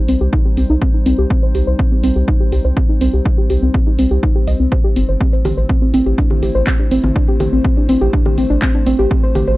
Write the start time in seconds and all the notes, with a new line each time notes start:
Already playing: G3 C4 D#4 C5
0.08 C2 C4, open hi-hat
0.21 C2 G4
0.33 D#4, kick
0.45 G4
0.57 C2 C4, open hi-hat
0.70 C2 D#4
0.82 C4, kick
0.94 D#4
1.06 C2 C4, open hi-hat
1.18 C2 G4
1.30 C4, kick
1.43 C5
1.55 C2 G4, open hi-hat
1.67 C2 C5
1.79 C4, kick
1.92 C4
2.04 C2 C4, open hi-hat
2.16 C2 G4
2.28 D#4, kick
2.40 G4
2.52 C2 G4, open hi-hat
2.65 C2 C5
2.77 C4, kick
2.89 D#4
3.01 C2 C4, open hi-hat
3.13 C2 G4
3.25 D#4, kick
3.38 G4
3.50 C2 G4, open hi-hat
3.62 C2 C4
3.74 C4, kick
3.87 D#4
3.99 C2 C4, open hi-hat
4.11 C2 G4
4.23 D#4, kick
4.35 G4
4.47 C2 D#5, open hi-hat
4.60 C2 C4
4.72 C5, kick
4.84 G4
4.96 G1 C4, open hi-hat
5.09 G1 C5
5.20 A3 C4 E4 C5, kick, maracas
5.33 C5, maracas
5.45 A1 G4, open hi-hat, low conga, maracas
5.57 A1 C5, maracas
5.69 C4, kick, maracas
5.82 C4
5.94 A1 C4, open hi-hat, maracas
6.06 A1 G4, maracas
6.18 D4, kick, maracas
6.31 G4, low conga
6.42 A1 G4, open hi-hat, maracas
6.55 A1 C5, maracas
6.67 C4, kick, clap, maracas
6.79 D4
6.91 A1 C4, open hi-hat, maracas
7.03 A1 C4, low conga, maracas
7.16 D4, kick, maracas
7.27 G4, maracas
7.40 A1 G4, open hi-hat, low conga, maracas
7.52 A1 C4, maracas
7.65 C4, kick, maracas
7.77 D4
7.89 A1 C4, open hi-hat, maracas
8.01 A1 G4, maracas
8.13 D4, kick, maracas
8.26 G4, low conga
8.37 A1 C4, open hi-hat, maracas
8.50 A1 D4, maracas
8.62 C4, kick, clap, maracas
8.74 D4, maracas
8.86 A1 C4, open hi-hat, maracas
8.99 A1 G4, maracas
9.11 C4 F#4, kick, maracas
9.23 C5, maracas
9.35 A1 G4, open hi-hat, low conga, maracas
9.47 A1 C5, maracas